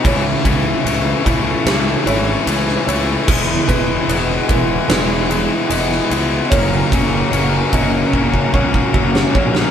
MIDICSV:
0, 0, Header, 1, 6, 480
1, 0, Start_track
1, 0, Tempo, 809717
1, 23, Time_signature, 4, 2, 24, 8
1, 5755, End_track
2, 0, Start_track
2, 0, Title_t, "Felt piano"
2, 0, Program_c, 0, 0
2, 31, Note_on_c, 0, 73, 103
2, 507, Note_off_c, 0, 73, 0
2, 744, Note_on_c, 0, 76, 87
2, 1224, Note_off_c, 0, 76, 0
2, 1224, Note_on_c, 0, 73, 72
2, 1689, Note_off_c, 0, 73, 0
2, 1698, Note_on_c, 0, 73, 85
2, 1941, Note_off_c, 0, 73, 0
2, 2183, Note_on_c, 0, 71, 87
2, 2659, Note_on_c, 0, 70, 85
2, 2663, Note_off_c, 0, 71, 0
2, 2896, Note_on_c, 0, 71, 94
2, 2901, Note_off_c, 0, 70, 0
2, 3378, Note_on_c, 0, 75, 81
2, 3380, Note_off_c, 0, 71, 0
2, 3855, Note_on_c, 0, 73, 110
2, 3860, Note_off_c, 0, 75, 0
2, 4339, Note_off_c, 0, 73, 0
2, 4578, Note_on_c, 0, 75, 76
2, 5060, Note_off_c, 0, 75, 0
2, 5062, Note_on_c, 0, 73, 79
2, 5530, Note_off_c, 0, 73, 0
2, 5539, Note_on_c, 0, 73, 80
2, 5755, Note_off_c, 0, 73, 0
2, 5755, End_track
3, 0, Start_track
3, 0, Title_t, "Ambient pad"
3, 0, Program_c, 1, 92
3, 28, Note_on_c, 1, 64, 87
3, 30, Note_on_c, 1, 69, 81
3, 30, Note_on_c, 1, 73, 78
3, 32, Note_on_c, 1, 81, 95
3, 1928, Note_off_c, 1, 69, 0
3, 1928, Note_off_c, 1, 73, 0
3, 1929, Note_off_c, 1, 81, 0
3, 1943, Note_on_c, 1, 59, 84
3, 1944, Note_on_c, 1, 68, 82
3, 1945, Note_on_c, 1, 78, 97
3, 3842, Note_off_c, 1, 64, 0
3, 3844, Note_off_c, 1, 59, 0
3, 3844, Note_off_c, 1, 68, 0
3, 3845, Note_off_c, 1, 78, 0
3, 3855, Note_on_c, 1, 66, 80
3, 3856, Note_on_c, 1, 78, 100
3, 3857, Note_on_c, 1, 61, 90
3, 3858, Note_on_c, 1, 70, 74
3, 5755, Note_off_c, 1, 61, 0
3, 5755, Note_off_c, 1, 66, 0
3, 5755, Note_off_c, 1, 70, 0
3, 5755, Note_off_c, 1, 78, 0
3, 5755, End_track
4, 0, Start_track
4, 0, Title_t, "Distorted electric guitar"
4, 0, Program_c, 2, 30
4, 19, Note_on_c, 2, 49, 108
4, 23, Note_on_c, 2, 52, 110
4, 26, Note_on_c, 2, 57, 105
4, 30, Note_on_c, 2, 64, 121
4, 255, Note_off_c, 2, 49, 0
4, 261, Note_off_c, 2, 57, 0
4, 262, Note_on_c, 2, 49, 104
4, 264, Note_off_c, 2, 52, 0
4, 266, Note_on_c, 2, 52, 101
4, 269, Note_on_c, 2, 57, 104
4, 271, Note_off_c, 2, 64, 0
4, 273, Note_on_c, 2, 64, 117
4, 493, Note_off_c, 2, 49, 0
4, 500, Note_on_c, 2, 49, 96
4, 502, Note_off_c, 2, 52, 0
4, 502, Note_off_c, 2, 57, 0
4, 505, Note_on_c, 2, 52, 85
4, 509, Note_off_c, 2, 64, 0
4, 509, Note_on_c, 2, 57, 84
4, 511, Note_on_c, 2, 64, 102
4, 734, Note_off_c, 2, 49, 0
4, 741, Note_on_c, 2, 49, 99
4, 742, Note_off_c, 2, 52, 0
4, 743, Note_off_c, 2, 57, 0
4, 744, Note_on_c, 2, 52, 83
4, 750, Note_off_c, 2, 64, 0
4, 750, Note_on_c, 2, 57, 100
4, 752, Note_on_c, 2, 64, 95
4, 974, Note_off_c, 2, 49, 0
4, 979, Note_off_c, 2, 52, 0
4, 981, Note_on_c, 2, 49, 90
4, 983, Note_off_c, 2, 57, 0
4, 985, Note_off_c, 2, 64, 0
4, 986, Note_on_c, 2, 52, 103
4, 990, Note_on_c, 2, 57, 107
4, 992, Note_on_c, 2, 64, 100
4, 1212, Note_off_c, 2, 49, 0
4, 1216, Note_off_c, 2, 52, 0
4, 1219, Note_off_c, 2, 57, 0
4, 1219, Note_on_c, 2, 49, 108
4, 1223, Note_on_c, 2, 52, 119
4, 1224, Note_off_c, 2, 64, 0
4, 1226, Note_on_c, 2, 57, 114
4, 1231, Note_on_c, 2, 64, 123
4, 1451, Note_off_c, 2, 49, 0
4, 1456, Note_off_c, 2, 52, 0
4, 1458, Note_on_c, 2, 49, 87
4, 1459, Note_off_c, 2, 57, 0
4, 1463, Note_off_c, 2, 64, 0
4, 1463, Note_on_c, 2, 52, 102
4, 1467, Note_on_c, 2, 57, 99
4, 1470, Note_on_c, 2, 64, 105
4, 1693, Note_off_c, 2, 49, 0
4, 1698, Note_off_c, 2, 52, 0
4, 1700, Note_on_c, 2, 49, 91
4, 1701, Note_off_c, 2, 57, 0
4, 1705, Note_off_c, 2, 64, 0
4, 1705, Note_on_c, 2, 52, 101
4, 1708, Note_on_c, 2, 57, 107
4, 1712, Note_on_c, 2, 64, 110
4, 1927, Note_off_c, 2, 49, 0
4, 1930, Note_off_c, 2, 52, 0
4, 1932, Note_off_c, 2, 57, 0
4, 1933, Note_off_c, 2, 64, 0
4, 1940, Note_on_c, 2, 52, 94
4, 1944, Note_on_c, 2, 56, 108
4, 1948, Note_on_c, 2, 59, 118
4, 1951, Note_on_c, 2, 64, 125
4, 2170, Note_off_c, 2, 52, 0
4, 2176, Note_off_c, 2, 56, 0
4, 2178, Note_on_c, 2, 52, 87
4, 2180, Note_off_c, 2, 59, 0
4, 2183, Note_off_c, 2, 64, 0
4, 2183, Note_on_c, 2, 56, 98
4, 2188, Note_on_c, 2, 59, 109
4, 2190, Note_on_c, 2, 64, 109
4, 2412, Note_off_c, 2, 52, 0
4, 2416, Note_off_c, 2, 56, 0
4, 2418, Note_off_c, 2, 59, 0
4, 2419, Note_on_c, 2, 52, 86
4, 2423, Note_on_c, 2, 56, 105
4, 2425, Note_off_c, 2, 64, 0
4, 2425, Note_on_c, 2, 59, 104
4, 2432, Note_on_c, 2, 64, 102
4, 2651, Note_off_c, 2, 52, 0
4, 2656, Note_off_c, 2, 56, 0
4, 2658, Note_on_c, 2, 52, 92
4, 2659, Note_off_c, 2, 59, 0
4, 2663, Note_off_c, 2, 64, 0
4, 2663, Note_on_c, 2, 56, 101
4, 2666, Note_on_c, 2, 59, 105
4, 2670, Note_on_c, 2, 64, 111
4, 2887, Note_off_c, 2, 52, 0
4, 2893, Note_off_c, 2, 56, 0
4, 2894, Note_on_c, 2, 52, 85
4, 2897, Note_off_c, 2, 59, 0
4, 2898, Note_off_c, 2, 64, 0
4, 2900, Note_on_c, 2, 56, 100
4, 2904, Note_on_c, 2, 59, 99
4, 2905, Note_on_c, 2, 64, 107
4, 3128, Note_off_c, 2, 52, 0
4, 3132, Note_off_c, 2, 56, 0
4, 3136, Note_on_c, 2, 52, 110
4, 3137, Note_off_c, 2, 59, 0
4, 3139, Note_off_c, 2, 64, 0
4, 3139, Note_on_c, 2, 56, 124
4, 3144, Note_on_c, 2, 59, 122
4, 3147, Note_on_c, 2, 64, 121
4, 3365, Note_off_c, 2, 52, 0
4, 3370, Note_off_c, 2, 56, 0
4, 3372, Note_on_c, 2, 52, 94
4, 3375, Note_off_c, 2, 59, 0
4, 3377, Note_off_c, 2, 64, 0
4, 3377, Note_on_c, 2, 56, 95
4, 3382, Note_on_c, 2, 59, 97
4, 3385, Note_on_c, 2, 64, 99
4, 3609, Note_off_c, 2, 52, 0
4, 3614, Note_off_c, 2, 56, 0
4, 3616, Note_off_c, 2, 59, 0
4, 3616, Note_on_c, 2, 52, 80
4, 3620, Note_off_c, 2, 64, 0
4, 3621, Note_on_c, 2, 56, 90
4, 3623, Note_on_c, 2, 59, 94
4, 3627, Note_on_c, 2, 64, 98
4, 3845, Note_off_c, 2, 52, 0
4, 3847, Note_off_c, 2, 56, 0
4, 3848, Note_off_c, 2, 59, 0
4, 3851, Note_off_c, 2, 64, 0
4, 3855, Note_on_c, 2, 42, 110
4, 3860, Note_on_c, 2, 49, 118
4, 3864, Note_on_c, 2, 54, 111
4, 3867, Note_on_c, 2, 58, 125
4, 3872, Note_on_c, 2, 61, 107
4, 4092, Note_off_c, 2, 42, 0
4, 4094, Note_off_c, 2, 49, 0
4, 4099, Note_on_c, 2, 42, 100
4, 4101, Note_off_c, 2, 58, 0
4, 4101, Note_on_c, 2, 49, 110
4, 4103, Note_off_c, 2, 54, 0
4, 4105, Note_on_c, 2, 54, 102
4, 4106, Note_off_c, 2, 61, 0
4, 4108, Note_on_c, 2, 58, 109
4, 4113, Note_on_c, 2, 61, 112
4, 4328, Note_off_c, 2, 42, 0
4, 4333, Note_off_c, 2, 49, 0
4, 4335, Note_on_c, 2, 42, 90
4, 4340, Note_on_c, 2, 49, 96
4, 4341, Note_off_c, 2, 54, 0
4, 4341, Note_off_c, 2, 58, 0
4, 4342, Note_off_c, 2, 61, 0
4, 4344, Note_on_c, 2, 54, 94
4, 4348, Note_on_c, 2, 58, 96
4, 4349, Note_on_c, 2, 61, 86
4, 4571, Note_off_c, 2, 42, 0
4, 4576, Note_off_c, 2, 49, 0
4, 4578, Note_on_c, 2, 42, 86
4, 4583, Note_off_c, 2, 54, 0
4, 4583, Note_off_c, 2, 58, 0
4, 4583, Note_on_c, 2, 49, 92
4, 4585, Note_on_c, 2, 54, 92
4, 4587, Note_off_c, 2, 61, 0
4, 4590, Note_on_c, 2, 58, 95
4, 4594, Note_on_c, 2, 61, 102
4, 4810, Note_off_c, 2, 42, 0
4, 4814, Note_off_c, 2, 49, 0
4, 4816, Note_off_c, 2, 54, 0
4, 4817, Note_on_c, 2, 42, 80
4, 4820, Note_off_c, 2, 58, 0
4, 4821, Note_on_c, 2, 49, 96
4, 4823, Note_off_c, 2, 61, 0
4, 4823, Note_on_c, 2, 54, 97
4, 4828, Note_on_c, 2, 58, 94
4, 4830, Note_on_c, 2, 61, 107
4, 5050, Note_off_c, 2, 42, 0
4, 5055, Note_off_c, 2, 49, 0
4, 5056, Note_off_c, 2, 54, 0
4, 5057, Note_on_c, 2, 42, 102
4, 5061, Note_off_c, 2, 58, 0
4, 5062, Note_off_c, 2, 61, 0
4, 5062, Note_on_c, 2, 49, 106
4, 5063, Note_on_c, 2, 54, 103
4, 5069, Note_on_c, 2, 58, 115
4, 5070, Note_on_c, 2, 61, 116
4, 5290, Note_off_c, 2, 42, 0
4, 5292, Note_off_c, 2, 49, 0
4, 5297, Note_off_c, 2, 54, 0
4, 5297, Note_on_c, 2, 42, 92
4, 5299, Note_on_c, 2, 49, 83
4, 5300, Note_off_c, 2, 58, 0
4, 5302, Note_off_c, 2, 61, 0
4, 5304, Note_on_c, 2, 54, 94
4, 5307, Note_on_c, 2, 58, 89
4, 5309, Note_on_c, 2, 61, 90
4, 5530, Note_off_c, 2, 42, 0
4, 5532, Note_off_c, 2, 49, 0
4, 5537, Note_on_c, 2, 42, 87
4, 5538, Note_off_c, 2, 54, 0
4, 5539, Note_off_c, 2, 58, 0
4, 5539, Note_on_c, 2, 49, 90
4, 5544, Note_off_c, 2, 61, 0
4, 5545, Note_on_c, 2, 54, 83
4, 5546, Note_on_c, 2, 58, 93
4, 5552, Note_on_c, 2, 61, 94
4, 5755, Note_off_c, 2, 42, 0
4, 5755, Note_off_c, 2, 49, 0
4, 5755, Note_off_c, 2, 54, 0
4, 5755, Note_off_c, 2, 58, 0
4, 5755, Note_off_c, 2, 61, 0
4, 5755, End_track
5, 0, Start_track
5, 0, Title_t, "Picked electric bass"
5, 0, Program_c, 3, 34
5, 28, Note_on_c, 3, 37, 96
5, 195, Note_off_c, 3, 37, 0
5, 265, Note_on_c, 3, 37, 94
5, 434, Note_off_c, 3, 37, 0
5, 503, Note_on_c, 3, 37, 99
5, 672, Note_off_c, 3, 37, 0
5, 746, Note_on_c, 3, 37, 91
5, 914, Note_off_c, 3, 37, 0
5, 984, Note_on_c, 3, 37, 99
5, 1153, Note_off_c, 3, 37, 0
5, 1223, Note_on_c, 3, 32, 102
5, 1392, Note_off_c, 3, 32, 0
5, 1463, Note_on_c, 3, 37, 94
5, 1632, Note_off_c, 3, 37, 0
5, 1704, Note_on_c, 3, 37, 102
5, 1873, Note_off_c, 3, 37, 0
5, 1944, Note_on_c, 3, 28, 94
5, 2113, Note_off_c, 3, 28, 0
5, 2185, Note_on_c, 3, 28, 91
5, 2354, Note_off_c, 3, 28, 0
5, 2421, Note_on_c, 3, 28, 102
5, 2591, Note_off_c, 3, 28, 0
5, 2664, Note_on_c, 3, 28, 90
5, 2832, Note_off_c, 3, 28, 0
5, 2899, Note_on_c, 3, 28, 104
5, 3238, Note_off_c, 3, 28, 0
5, 3380, Note_on_c, 3, 28, 95
5, 3550, Note_off_c, 3, 28, 0
5, 3620, Note_on_c, 3, 37, 96
5, 3790, Note_off_c, 3, 37, 0
5, 3863, Note_on_c, 3, 30, 104
5, 4032, Note_off_c, 3, 30, 0
5, 4103, Note_on_c, 3, 30, 91
5, 4272, Note_off_c, 3, 30, 0
5, 4339, Note_on_c, 3, 30, 95
5, 4509, Note_off_c, 3, 30, 0
5, 4581, Note_on_c, 3, 30, 87
5, 4750, Note_off_c, 3, 30, 0
5, 4821, Note_on_c, 3, 30, 96
5, 4990, Note_off_c, 3, 30, 0
5, 5059, Note_on_c, 3, 37, 99
5, 5229, Note_off_c, 3, 37, 0
5, 5300, Note_on_c, 3, 30, 99
5, 5470, Note_off_c, 3, 30, 0
5, 5542, Note_on_c, 3, 34, 94
5, 5711, Note_off_c, 3, 34, 0
5, 5755, End_track
6, 0, Start_track
6, 0, Title_t, "Drums"
6, 29, Note_on_c, 9, 36, 127
6, 31, Note_on_c, 9, 51, 117
6, 88, Note_off_c, 9, 36, 0
6, 91, Note_off_c, 9, 51, 0
6, 268, Note_on_c, 9, 36, 99
6, 269, Note_on_c, 9, 51, 90
6, 327, Note_off_c, 9, 36, 0
6, 328, Note_off_c, 9, 51, 0
6, 513, Note_on_c, 9, 51, 119
6, 572, Note_off_c, 9, 51, 0
6, 748, Note_on_c, 9, 36, 85
6, 750, Note_on_c, 9, 51, 78
6, 807, Note_off_c, 9, 36, 0
6, 810, Note_off_c, 9, 51, 0
6, 988, Note_on_c, 9, 38, 118
6, 988, Note_on_c, 9, 51, 115
6, 1047, Note_off_c, 9, 38, 0
6, 1047, Note_off_c, 9, 51, 0
6, 1227, Note_on_c, 9, 51, 84
6, 1286, Note_off_c, 9, 51, 0
6, 1465, Note_on_c, 9, 51, 127
6, 1524, Note_off_c, 9, 51, 0
6, 1590, Note_on_c, 9, 38, 39
6, 1649, Note_off_c, 9, 38, 0
6, 1710, Note_on_c, 9, 51, 85
6, 1770, Note_off_c, 9, 51, 0
6, 1945, Note_on_c, 9, 36, 127
6, 1946, Note_on_c, 9, 49, 126
6, 2004, Note_off_c, 9, 36, 0
6, 2005, Note_off_c, 9, 49, 0
6, 2186, Note_on_c, 9, 36, 85
6, 2188, Note_on_c, 9, 51, 87
6, 2245, Note_off_c, 9, 36, 0
6, 2247, Note_off_c, 9, 51, 0
6, 2426, Note_on_c, 9, 51, 110
6, 2485, Note_off_c, 9, 51, 0
6, 2662, Note_on_c, 9, 51, 81
6, 2664, Note_on_c, 9, 36, 91
6, 2721, Note_off_c, 9, 51, 0
6, 2723, Note_off_c, 9, 36, 0
6, 2903, Note_on_c, 9, 38, 116
6, 2903, Note_on_c, 9, 51, 115
6, 2962, Note_off_c, 9, 38, 0
6, 2962, Note_off_c, 9, 51, 0
6, 3146, Note_on_c, 9, 51, 86
6, 3205, Note_off_c, 9, 51, 0
6, 3381, Note_on_c, 9, 51, 124
6, 3441, Note_off_c, 9, 51, 0
6, 3507, Note_on_c, 9, 38, 37
6, 3566, Note_off_c, 9, 38, 0
6, 3624, Note_on_c, 9, 51, 82
6, 3683, Note_off_c, 9, 51, 0
6, 3863, Note_on_c, 9, 36, 127
6, 3866, Note_on_c, 9, 51, 126
6, 3923, Note_off_c, 9, 36, 0
6, 3926, Note_off_c, 9, 51, 0
6, 4103, Note_on_c, 9, 36, 101
6, 4107, Note_on_c, 9, 51, 93
6, 4162, Note_off_c, 9, 36, 0
6, 4166, Note_off_c, 9, 51, 0
6, 4344, Note_on_c, 9, 51, 109
6, 4404, Note_off_c, 9, 51, 0
6, 4581, Note_on_c, 9, 51, 94
6, 4582, Note_on_c, 9, 36, 81
6, 4640, Note_off_c, 9, 51, 0
6, 4641, Note_off_c, 9, 36, 0
6, 4822, Note_on_c, 9, 36, 70
6, 4881, Note_off_c, 9, 36, 0
6, 4941, Note_on_c, 9, 36, 66
6, 5001, Note_off_c, 9, 36, 0
6, 5061, Note_on_c, 9, 36, 87
6, 5120, Note_off_c, 9, 36, 0
6, 5182, Note_on_c, 9, 36, 84
6, 5241, Note_off_c, 9, 36, 0
6, 5301, Note_on_c, 9, 36, 100
6, 5361, Note_off_c, 9, 36, 0
6, 5425, Note_on_c, 9, 38, 95
6, 5484, Note_off_c, 9, 38, 0
6, 5543, Note_on_c, 9, 36, 97
6, 5602, Note_off_c, 9, 36, 0
6, 5659, Note_on_c, 9, 38, 95
6, 5719, Note_off_c, 9, 38, 0
6, 5755, End_track
0, 0, End_of_file